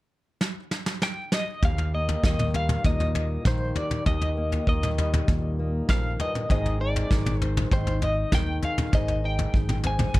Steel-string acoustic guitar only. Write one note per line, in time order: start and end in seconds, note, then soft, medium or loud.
1.62 4.04 D#2 medium
1.62 3.75 G4 medium
1.94 3.14 A#3 soft
2.25 3.44 D#3 medium
2.55 4.96 G3 medium
2.85 3.45 A#2 medium
3.16 4.36 A#3 soft
3.45 4.66 D#3 medium
3.77 4.03 G4 soft
4.05 5.88 D#2 medium
4.05 6.46 G4 medium
4.37 5.58 A#3 medium
4.68 6.49 D#3 medium
4.98 6.50 G3 medium
5.28 6.50 A#2 medium
5.59 6.50 A#3 soft
5.88 6.19 F2 medium
6.20 6.48 G2 medium
6.49 8.89 G#2 medium
6.49 7.09 D#3 medium
6.49 7.41 C4 medium
6.49 6.80 D#4 medium
6.49 8.62 G#4 medium
6.80 8.03 D#4 medium
7.10 7.71 D#3 medium
7.42 8.90 C4 soft
7.72 8.31 D#3 medium
8.03 9.24 D#4 soft
8.33 9.54 D#3 medium
8.63 8.90 G#4 medium
8.92 10.20 G#2 medium
8.92 10.20 G#4 medium
9.24 10.20 D#4 medium
9.85 10.20 C4 soft